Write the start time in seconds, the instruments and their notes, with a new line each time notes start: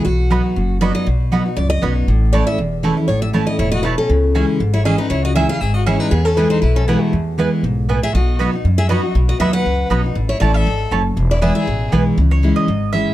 0.05 upright bass B1, steel-string acoustic guitar B2 F#4
0.30 steel-string acoustic guitar F#3 B3 D#4 F#4, mandolin B3 F#4 D#5 B5
0.56 upright bass F#1, steel-string acoustic guitar F#2
0.81 steel-string acoustic guitar F#3 B3 D#4 F#4 D5, mandolin B3 F#4 D#5 B5
0.95 steel-string acoustic guitar D#5
1.06 upright bass B1, steel-string acoustic guitar B2
1.32 steel-string acoustic guitar F#3 B3 D#4 F#4, mandolin B3 F#4 D#5 B5
1.46 steel-string acoustic guitar D#4 F#4
1.57 upright bass C#2, steel-string acoustic guitar F#2 D5
1.70 steel-string acoustic guitar D#5
1.81 upright bass B1, steel-string acoustic guitar F#3 B3 D#4 F#4, mandolin B3 F#4 D#5 B5
2.08 upright bass A1, steel-string acoustic guitar A2
2.32 steel-string acoustic guitar E3 A3 C#4 E4 D5, mandolin A3 E4 C#5 A5
2.47 steel-string acoustic guitar C#4 E4 E5
2.58 upright bass E1, steel-string acoustic guitar E2
2.83 steel-string acoustic guitar E3 A3 C#4 E4, mandolin A3 E4 C#5 A5
2.97 steel-string acoustic guitar C#4 E4
3.08 upright bass A1, steel-string acoustic guitar A2 C#5
3.22 steel-string acoustic guitar E5
3.33 steel-string acoustic guitar E3 A3 C#4 E4, mandolin A3 E4 C#5 A5
3.47 steel-string acoustic guitar C#4 E4 D#5
3.59 upright bass E1, steel-string acoustic guitar A2 C#5, fiddle E4
3.72 fiddle F#4, steel-string acoustic guitar D#5
3.83 steel-string acoustic guitar B2 B4, mandolin A3 E4 C#5 A5, fiddle E4
3.98 fiddle C#4, steel-string acoustic guitar A4
4.09 upright bass C#2, steel-string acoustic guitar C#3
4.35 steel-string acoustic guitar E3 G#3 C#4 E4, mandolin C#4 G#4 E5 G#5
4.60 upright bass G#1, steel-string acoustic guitar G#2
4.73 fiddle E4, steel-string acoustic guitar C#5
4.85 steel-string acoustic guitar E3 G#3 C#4 E4 D#5, mandolin C#4 G#4 E5 G#5, fiddle G#4
4.98 steel-string acoustic guitar C#4 E4 B4, fiddle D#4
5.10 upright bass C#2, steel-string acoustic guitar C#3 C#5, fiddle E4
5.24 fiddle F#4, steel-string acoustic guitar D#5
5.35 steel-string acoustic guitar E3 G#3 C#4 E4 E5, mandolin C#4 G#4 E5 G#5, fiddle G#4
5.49 steel-string acoustic guitar C#4 E4 F5, fiddle G#4
5.61 upright bass G#1, steel-string acoustic guitar G#2 E5, fiddle G#4
5.74 fiddle F#4, steel-string acoustic guitar D#5
5.86 steel-string acoustic guitar E3 G#3 C#4 E4 C#5, mandolin C#4 G#4 E5 G#5, fiddle E4
6.00 fiddle D#4, steel-string acoustic guitar B4
6.11 upright bass E2, steel-string acoustic guitar E2 G#4, fiddle B3
6.25 fiddle C#4, steel-string acoustic guitar A4
6.36 steel-string acoustic guitar E3 G#3 B3 E4 B4, mandolin B3 E4 B4 G#5, fiddle E4
6.50 fiddle D#4, steel-string acoustic guitar C5
6.62 upright bass B1, steel-string acoustic guitar B2 B4, fiddle E4
6.76 fiddle C#4, steel-string acoustic guitar A4
6.88 steel-string acoustic guitar E3 G#3 B3 E4 G#4, fiddle B3, mandolin B3 E4 B4 G#5
7.00 fiddle A3, steel-string acoustic guitar F#4
7.13 upright bass E2, steel-string acoustic guitar E2
7.38 steel-string acoustic guitar E3 G#3 B3 E4, mandolin B3 E4 B4 G#5
7.63 upright bass B1, steel-string acoustic guitar G#2
7.89 steel-string acoustic guitar A2, mandolin B3 E4 B4 G#5
8.03 fiddle G#4, steel-string acoustic guitar E5
8.14 upright bass B1, steel-string acoustic guitar B2 D#5, fiddle F#4
8.39 steel-string acoustic guitar F#3 B3 D#4 F#4, mandolin B3 F#4 D#5 B5
8.53 steel-string acoustic guitar D#4 F#4
8.64 upright bass F#2, steel-string acoustic guitar F#2
8.78 fiddle G#4, steel-string acoustic guitar E5
8.89 steel-string acoustic guitar F#3 B3 D#4 F#4 D#5, mandolin B3 F#4 D#5 B5, fiddle F#4
9.03 steel-string acoustic guitar D#4 F#4
9.15 upright bass B1, steel-string acoustic guitar B2
9.28 fiddle F#4, steel-string acoustic guitar D#5
9.40 upright bass D#2, steel-string acoustic guitar F#3 B3 D#4 F#4 E5, mandolin B3 F#4 D#5 B5, fiddle B4
9.53 fiddle B4, steel-string acoustic guitar F#5
9.65 upright bass C#2, steel-string acoustic guitar F#2
9.90 upright bass B1, steel-string acoustic guitar F#3 B3 D#4 F#4, mandolin B3 F#4 D#5 B5
10.04 steel-string acoustic guitar D#4 F#4
10.15 upright bass A1, steel-string acoustic guitar A2
10.29 fiddle E4, steel-string acoustic guitar C#5
10.40 upright bass A1, steel-string acoustic guitar E3 A3 C#4 E4 D5, mandolin A3 E4 C#5 A5, fiddle E4
10.54 fiddle A4, steel-string acoustic guitar E5
10.66 upright bass G#1, steel-string acoustic guitar G#2
10.91 upright bass F#1, steel-string acoustic guitar F#2, mandolin A3 E4 C#5 A5
11.16 upright bass E1, steel-string acoustic guitar E2
11.31 fiddle E4, steel-string acoustic guitar D5
11.42 steel-string acoustic guitar E3 G#3 B3 E4 E5, mandolin B3 E4 B4 G#5, fiddle G#4
11.55 fiddle G#4, steel-string acoustic guitar E5
11.67 upright bass A1, steel-string acoustic guitar B2
11.92 upright bass B1, steel-string acoustic guitar E3 G#3 B3 E4, mandolin B3 E4 B4 G#5
12.18 upright bass C#2, steel-string acoustic guitar C#3
12.31 mandolin C#5
12.43 steel-string acoustic guitar E3 G#3 C#4 E4
12.56 mandolin D#5
12.68 upright bass G#1, steel-string acoustic guitar G#2
12.93 steel-string acoustic guitar E3 G#3 C#4 E4, mandolin E5